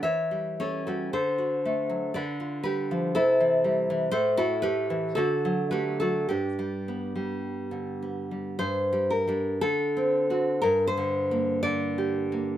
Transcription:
\new Staff \with { instrumentName = "Nylon-string guitar" } { \time 2/4 \key g \major \tempo 4 = 58 << { <cis'' e''>8 <a' cis''>16 <fis' a'>16 <a' c''>4 | <b' d''>8 <g' b'>8 <e' a'>4 | <a' c''>16 <fis' a'>16 <g' b'>8 <fis' a'>8 <g' b'>16 <fis' a'>16 | <d' g'>4. r8 |
\key g \minor c''8 bes'8 a'4 | bes'16 c''8. d''4 | } \\ { e16 g16 cis'16 g16 d16 fis'16 a16 fis16 | d16 f'16 g16 f16 c16 e16 g16 e16 | a,16 e'16 a16 e16 d16 fis16 a16 fis16 | g,16 g16 b16 g8 d16 b16 g16 |
\tuplet 3/2 { g,8 g8 <g d'>8 d8 c'8 <c' fis'>8 } | \tuplet 3/2 { g,8 d8 bes8 d8 g'8 bes8 } | } >> }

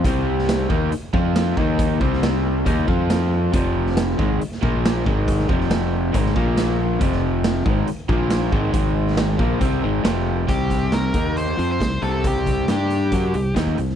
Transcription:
<<
  \new Staff \with { instrumentName = "Lead electric guitar" } { \time 4/4 \key f \lydian \tempo 4 = 138 r1 | r1 | r1 | r1 |
r1 | r1 | g'4 bes'4 c''8. c''8. a'8 | g'4 g'2 r4 | }
  \new Staff \with { instrumentName = "Overdriven electric guitar" } { \clef bass \time 4/4 \key f \lydian <c g c'>4. <ees bes ees'>8 r8 <f c' f'>4 <ees bes ees'>8~ | <ees bes ees'>8 <c g c'>4. <ees bes ees'>8 <f c' f'>4. | <f, c f>4. <aes, ees aes>8 r8 <bes, f bes>4 <aes, ees aes>8~ | <aes, ees aes>8 <f, c f>4. <aes, ees aes>8 <bes, f bes>4. |
<f, c f>4. <aes, ees aes>8 r8 <bes, f bes>4 <aes, ees aes>8 | <aes, ees aes>4. <bes, f bes>8 <c g c'>8 <aes, ees aes>8 <f, c f>4 | <c g c'>4. <ees bes ees'>4 <f c' f'>8 <c g>8 <c g c'>8~ | <c g c'>4 <g d' g'>4 <fis des' fis'>8 <c g>8 <ees bes ees'>8 <c g>8 | }
  \new Staff \with { instrumentName = "Overdriven electric guitar" } { \clef bass \time 4/4 \key f \lydian <c g c'>4. <ees bes ees'>8 r8 <f c' f'>4 <ees bes ees'>8~ | <ees bes ees'>8 <c g c'>4. <ees bes ees'>8 <f c' f'>4. | <f, c f>4. <aes, ees aes>8 r8 <bes, f bes>4 <aes, ees aes>8~ | <aes, ees aes>8 <f, c f>4. <aes, ees aes>8 <bes, f bes>4. |
<f, c f>4. <aes, ees aes>8 r8 <bes, f bes>4 <aes, ees aes>8 | <aes, ees aes>4. <bes, f bes>8 <c g c'>8 <aes, ees aes>8 <f, c f>4 | <c g c'>4. <ees bes ees'>4 <f c' f'>8 <c g>8 <c g c'>8~ | <c g c'>4 <g d' g'>4 <fis des' fis'>8 <c g>8 <ees bes ees'>8 <c g>8 | }
  \new Staff \with { instrumentName = "Fingered electric bass" } { \clef bass \time 4/4 \key f \lydian c,4. ees,8 r8 f,4 ees,8~ | ees,8 c,4. ees,8 f,4. | f,,4. aes,,8 r8 bes,,4 aes,,8~ | aes,,8 f,,4. aes,,8 bes,,4. |
f,,4. aes,,8 r8 bes,,4 aes,,8 | aes,,4. bes,,8 c,8 aes,,8 f,,4 | c,4. ees,4 f,8 c,8 c,8~ | c,4 g,4 fis,8 c,8 ees,8 c,8 | }
  \new DrumStaff \with { instrumentName = "Drums" } \drummode { \time 4/4 <hh bd>8. sn16 <hh sn>8 bd8 hh8 bd8 <hh sn>8 bd8 | <hh bd>8 bd16 sn16 <hh sn>4 <hh bd>8 bd8 <hh sn>4 | <hh bd>8. sn16 <hh sn>8 bd8 hh16 sn16 bd8 <hh sn>8 bd8 | <hh bd>16 sn16 bd16 sn16 <hh sn>4 <hh bd>16 sn16 bd8 <hh sn>4 |
<hh bd>16 sn8. <hh sn>8 bd8 hh8 bd8 <hh sn>8 bd8 | <hh bd>8. sn16 <hh sn>8 bd8 <hh bd>4 <hh sn>4 | <hh bd>8 <hh bd>8 <hh sn>8 <hh bd>8 hh8 hh8 <hh bd sn>8 hh8 | <hh bd>8 <hh bd>8 <hh sn>8 hh8 <hh bd>8 hh8 <hh bd sn>16 bd16 hh16 sn16 | }
>>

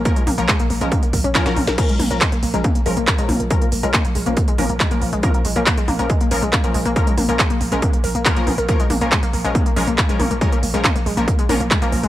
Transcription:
<<
  \new Staff \with { instrumentName = "Synth stab" } { \time 4/4 \key bes \minor \tempo 4 = 139 <f des' bes'>8 r16 <f des' bes'>16 r8. <f des' bes'>16 r4 <f des' bes'>16 <f des' bes'>8 r16 | <f des' bes'>8 r16 <f des' bes'>16 r8. <f des' bes'>16 r8 <f des' bes'>16 r8 <f des' bes'>8. | <f des' bes'>8 r16 <f des' bes'>16 r8. <f des' bes'>16 r8 <f des' bes'>16 r8 <f des' bes'>8. | <f des' bes'>8 r16 <f des' bes'>16 r8. <f des' bes'>16 r8 <f des' bes'>16 r8 <f des' bes'>8. |
<f des' bes'>8 r16 <f des' bes'>16 r8. <f des' bes'>16 r4 <f des' bes'>16 <f des' bes'>8 r16 | <f des' bes'>8 r16 <f des' bes'>16 r8. <f des' bes'>16 r8 <f des' bes'>16 r8 <f des' bes'>8. | <f des' bes'>8 r16 <f des' bes'>16 r8. <f des' bes'>16 r8 <f des' bes'>16 r8 <f des' bes'>8. | }
  \new Staff \with { instrumentName = "Synth arpeggio sound" } { \time 4/4 \key bes \minor bes16 aes16 bes16 bes16 aes16 bes16 bes16 aes16 bes16 bes16 bes16 des'16 f'16 ges'16 des'16 bes'16 | bes16 aes16 bes16 bes16 aes16 bes16 bes16 aes16 bes16 bes16 aes16 bes16 r16 aes16 bes16 bes16 | aes16 bes16 bes16 aes16 bes16 bes16 aes16 bes16 bes16 aes16 bes16 bes16 aes16 bes16 bes16 aes16 | bes16 bes16 aes16 bes16 r16 aes16 bes16 bes16 aes16 bes16 bes16 aes16 bes16 bes16 aes16 bes16 |
bes16 aes16 bes16 bes16 aes16 bes16 bes16 aes16 bes16 bes16 bes'16 bes16 bes16 bes16 ces'16 bes'16 | bes16 aes16 bes16 bes16 aes16 bes16 bes16 aes16 bes16 bes16 aes16 bes16 bes16 aes16 bes16 bes16 | aes16 bes16 bes16 aes16 bes16 bes16 aes16 bes16 bes16 aes16 bes16 bes16 aes16 bes16 bes16 aes16 | }
  \new Staff \with { instrumentName = "808-style bass" } { \clef bass \time 4/4 \key bes \minor r8 bes,,16 bes,,16 r16 bes,,16 bes,,16 bes,,16 r8 bes,,16 bes,,16 r16 bes,,16 bes,,16 bes,,16 | r8 bes,,16 bes,,16 r16 bes,,16 bes,,16 bes,,16 r8 bes,,16 bes,,16 r16 bes,,16 bes,,16 bes,,16 | r8 bes,,16 bes,,16 r16 bes,,16 bes,,16 bes,,16 r8 bes,,16 bes,,16 r16 bes,,16 bes,,16 bes,,16 | r8 bes,,16 bes,,16 r16 bes,,16 bes,,16 bes,,16 r8 bes,,16 bes,,16 r16 bes,,16 bes,,16 bes,,16 |
r8 bes,,16 bes,,16 r16 bes,,16 bes,,16 bes,,16 r8 bes,,16 bes,,16 r16 bes,,16 bes,,16 bes,,16 | r8 bes,,16 bes,,16 r16 bes,,16 bes,,16 bes,,16 r8 bes,,16 bes,,16 r16 bes,,16 bes,,16 bes,,16 | r8 bes,,16 bes,,16 r16 bes,,16 bes,,16 bes,,16 r8 bes,,16 bes,,16 r16 bes,,16 bes,,16 bes,,16 | }
  \new DrumStaff \with { instrumentName = "Drums" } \drummode { \time 4/4 <hh bd>16 hh16 <hho toml>16 hh16 <hc hh bd>16 hh16 hho16 hh16 <hh bd toml>16 hh16 <hho bd>16 hh16 <hc hh bd sn>16 <hh sn>16 <hho toml>16 <hh sn>16 | <cymc hh bd>16 hh16 <hho toml>16 hh16 <hc hh bd>16 hh16 hho16 hh16 <hh bd toml>16 hh16 hho16 hh16 <hc hh bd>16 hh16 <hho toml>16 hh16 | <hh bd>16 hh16 hho16 hh16 <hc hh bd toml>16 hh16 hho16 hh16 <hh bd>16 hh16 <hho toml>16 hh16 <hc hh bd>16 hh16 hho16 hh16 | <hh bd toml>16 hh16 hho16 hh16 <hc hh bd>16 hh16 <hho toml>16 hh16 <hh bd>16 hh16 hho16 hh16 <hc hh bd toml>16 hh16 hho16 hh16 |
<hh bd>16 hh16 <hho toml>16 hh16 <hc hh bd>16 hh16 hho16 hh16 <hh bd toml>16 hh16 hho16 hh16 <hc hh bd>16 hh16 <hho toml>16 hh16 | <hh bd>16 hh16 <hho toml>16 hh16 <hc hh bd>16 hh16 hho16 hh16 <hh bd toml>16 hh16 hho16 hh16 <hc hh bd>16 hh16 <hho toml>16 hh16 | <hh bd>16 hh16 hho16 hh16 <hc hh bd toml>16 hh16 hho16 hh16 <hh bd>16 hh16 <hho toml>16 hh16 <hc hh bd>16 hh16 hho16 hh16 | }
>>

